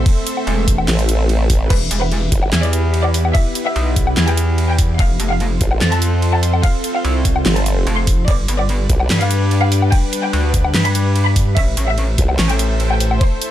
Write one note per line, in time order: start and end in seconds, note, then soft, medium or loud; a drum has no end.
0.00 1.67 A3 medium
0.00 1.70 C4 medium
0.00 1.67 A4 medium
0.00 3.02 A4 medium
0.00 1.67 C5 medium
0.00 1.67 E5 medium
0.00 4.99 E5 medium
0.00 1.70 C6 medium
0.06 kick loud
0.06 ride medium
0.27 closed hi-hat medium
0.37 low woodblock soft
0.47 0.87 E1 loud
0.47 ride soft
0.68 kick medium
0.68 closed hi-hat medium
0.78 low woodblock medium
0.88 1.69 A1 loud
0.88 snare loud
0.88 clap medium
0.88 ride medium
0.99 closed hi-hat soft
1.09 closed hi-hat medium
1.29 ride soft
1.50 kick medium
1.50 open hi-hat loud
1.70 1.89 E1 loud
1.70 4.99 B3 medium
1.70 4.96 E4 medium
1.70 4.96 G4 medium
1.70 1.88 B4 loud
1.70 4.96 B4 medium
1.70 kick loud
1.70 crash medium
1.70 ride medium
1.86 6.31 G4 medium
1.91 2.30 E1 medium
1.91 4.99 B5 medium
1.91 closed hi-hat medium
2.02 2.19 B4 loud
2.02 low woodblock medium
2.11 ride soft
2.32 2.51 G1 loud
2.32 kick medium
2.32 closed hi-hat medium
2.43 low woodblock medium
2.52 3.33 E2 loud
2.52 snare loud
2.52 clap medium
2.52 ride medium
2.63 2.87 D5 loud
2.63 closed hi-hat soft
2.73 closed hi-hat medium
2.94 ride soft
3.04 3.22 D5 medium
3.04 low woodblock medium
3.14 open hi-hat medium
3.25 low woodblock medium
3.35 3.53 E5 loud
3.35 kick loud
3.35 ride medium
3.55 closed hi-hat medium
3.66 3.84 E5 loud
3.66 low woodblock medium
3.76 4.15 B1 loud
3.76 ride soft
3.96 kick medium
3.96 closed hi-hat medium
4.07 low woodblock medium
4.17 4.98 E2 loud
4.17 snare loud
4.17 clap medium
4.17 ride medium
4.28 4.51 G5 loud
4.28 closed hi-hat soft
4.37 closed hi-hat medium
4.58 ride soft
4.69 4.86 G5 loud
4.79 kick medium
4.79 open hi-hat medium
4.99 5.18 F1 loud
4.99 8.28 C4 medium
4.99 8.25 F4 medium
4.99 8.25 A4 medium
4.99 8.25 C5 loud
4.99 5.17 F5 loud
4.99 kick loud
4.99 ride medium
5.07 9.60 A4 medium
5.11 9.23 F5 medium
5.11 8.28 C6 medium
5.20 5.59 F1 medium
5.20 closed hi-hat medium
5.30 5.48 F5 loud
5.30 low woodblock medium
5.40 ride soft
5.61 5.80 A1 loud
5.61 kick medium
5.61 closed hi-hat medium
5.71 low woodblock medium
5.81 6.62 F2 loud
5.81 snare loud
5.81 clap medium
5.81 ride medium
5.92 6.16 A5 medium
5.92 closed hi-hat soft
6.02 closed hi-hat medium
6.22 ride soft
6.33 6.51 A5 medium
6.33 low woodblock medium
6.43 open hi-hat medium
6.54 low woodblock medium
6.63 6.81 F5 loud
6.63 kick loud
6.63 ride medium
6.84 closed hi-hat medium
6.95 7.12 F5 loud
6.95 low woodblock medium
7.05 7.44 C2 loud
7.05 ride soft
7.25 kick medium
7.25 closed hi-hat medium
7.36 low woodblock medium
7.46 7.85 G1 medium
7.46 snare loud
7.46 clap medium
7.46 ride medium
7.56 7.80 A5 medium
7.56 closed hi-hat soft
7.66 closed hi-hat medium
7.87 8.26 F1 medium
7.87 ride soft
7.97 8.15 C6 medium
8.07 kick medium
8.07 open hi-hat medium
8.28 8.47 G1 loud
8.28 11.53 G3 medium
8.28 12.89 D4 medium
8.28 11.53 G4 medium
8.28 11.53 B4 medium
8.28 8.46 D5 loud
8.28 11.53 D5 medium
8.28 kick loud
8.28 ride medium
8.38 12.59 G5 medium
8.38 11.57 B5 loud
8.46 8.88 G1 loud
8.46 11.57 B4 loud
8.46 closed hi-hat medium
8.59 8.77 D5 loud
8.59 low woodblock medium
8.69 ride medium
8.89 9.08 B1 loud
8.89 kick medium
8.89 closed hi-hat medium
9.00 low woodblock medium
9.10 9.91 G2 loud
9.10 snare loud
9.10 clap medium
9.10 ride medium
9.21 9.44 F5 medium
9.21 closed hi-hat soft
9.31 closed hi-hat medium
9.51 ride soft
9.62 9.79 F5 medium
9.62 low woodblock medium
9.72 open hi-hat medium
9.82 low woodblock medium
9.92 10.10 G5 loud
9.92 kick loud
9.92 ride medium
10.13 closed hi-hat medium
10.23 10.41 G5 loud
10.23 low woodblock medium
10.33 10.73 D2 loud
10.33 ride medium
10.54 kick medium
10.54 closed hi-hat medium
10.65 low woodblock medium
10.74 11.55 G2 loud
10.74 snare loud
10.74 clap medium
10.74 ride medium
10.85 11.09 B5 medium
10.85 closed hi-hat soft
10.95 closed hi-hat medium
11.16 ride medium
11.26 11.44 B5 loud
11.36 kick medium
11.36 open hi-hat loud
11.57 11.76 A1 loud
11.57 13.51 A3 medium
11.57 13.51 E4 medium
11.57 13.51 A4 medium
11.57 13.51 C5 medium
11.57 11.74 E5 loud
11.57 13.51 E5 medium
11.57 kick loud
11.57 ride medium
11.67 13.51 C5 loud
11.67 13.51 C6 medium
11.77 12.17 A1 loud
11.77 closed hi-hat medium
11.88 12.05 E5 medium
11.88 low woodblock medium
11.95 13.51 A5 medium
11.95 ride soft
12.18 12.37 C2 loud
12.18 kick medium
12.18 closed hi-hat medium
12.29 low woodblock medium
12.39 13.19 A1 loud
12.39 snare loud
12.39 clap medium
12.39 ride medium
12.49 12.73 G5 loud
12.49 closed hi-hat soft
12.59 closed hi-hat medium
12.80 ride soft
12.91 13.08 G5 medium
12.91 low woodblock medium
13.00 open hi-hat loud
13.11 low woodblock medium
13.21 13.39 C5 loud
13.21 kick loud
13.21 ride medium
13.42 closed hi-hat medium